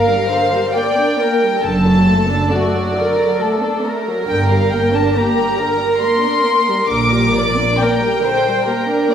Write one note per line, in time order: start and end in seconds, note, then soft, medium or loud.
0.00 0.26 A#4 soft
0.00 1.60 A#4 soft
0.00 0.75 F5 medium
0.08 0.30 G3 soft
0.29 0.53 D3 soft
0.29 0.75 C5 soft
0.54 0.76 G3 soft
0.75 0.98 A#3 soft
0.75 1.19 D5 soft
0.75 1.63 G5 medium
0.98 1.19 D4 soft
1.20 1.42 A#3 soft
1.20 1.63 A#4 soft
1.42 1.64 G3 soft
1.62 2.38 F#1 soft
1.62 2.37 F#2 medium
1.62 1.84 D3 soft
1.62 2.51 A4 soft
1.62 4.24 A4 soft
1.62 2.51 A5 medium
1.87 2.08 F#3 soft
2.08 2.30 A3 soft
2.29 2.52 D4 soft
2.52 2.74 A3 soft
2.52 2.97 F#4 soft
2.52 3.85 D5 medium
2.74 2.96 F#3 soft
2.97 3.19 D3 soft
2.97 3.42 A#4 soft
3.18 3.41 F#3 soft
3.41 3.63 A3 soft
3.41 3.85 A4 soft
3.62 3.84 D4 soft
3.84 4.06 A3 soft
3.84 5.16 A#4 soft
4.07 4.29 F#3 soft
4.28 5.01 G1 medium
4.28 5.01 G2 medium
4.28 4.49 D3 soft
4.28 9.14 A#4 soft
4.28 4.49 G5 medium
4.50 4.72 G3 soft
4.50 4.73 F5 medium
4.71 4.94 A#3 soft
4.71 4.94 G5 medium
4.93 5.16 D4 soft
4.93 5.17 A5 medium
5.16 5.38 A#3 soft
5.16 5.59 G4 soft
5.16 6.02 A#5 medium
5.37 5.59 G3 soft
5.59 5.81 D3 soft
5.59 6.90 A#4 medium
5.81 6.02 G3 soft
6.02 6.24 A#3 soft
6.02 6.90 C6 medium
6.24 6.46 D4 soft
6.46 6.68 A#3 soft
6.68 6.90 G3 soft
6.89 7.64 A#1 medium
6.89 7.64 A#2 medium
6.89 7.10 D3 soft
6.89 7.34 A#4 soft
6.89 7.77 D6 medium
7.12 7.34 G3 soft
7.34 7.56 A#3 soft
7.34 7.80 D5 medium
7.57 7.79 D4 soft
7.78 8.01 A#3 soft
7.78 8.24 A#4 medium
7.78 9.11 G5 medium
8.02 8.24 G3 soft
8.23 8.46 D3 soft
8.23 8.68 C5 medium
8.46 8.67 G3 soft
8.66 8.89 A#3 soft
8.66 9.10 A#4 soft
8.89 9.11 D4 soft
9.11 9.14 D5 medium